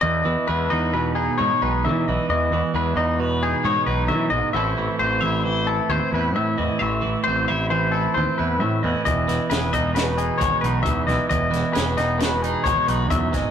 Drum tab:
HH |----------|----------|----------|----------|
SD |----------|----------|----------|----------|
BD |----------|----------|----------|----------|

HH |xxxxxxxxxx|xxxxxxxxxx|
SD |-oo-o----o|-oooo----o|
BD |o--o--o-oo|o-----o-oo|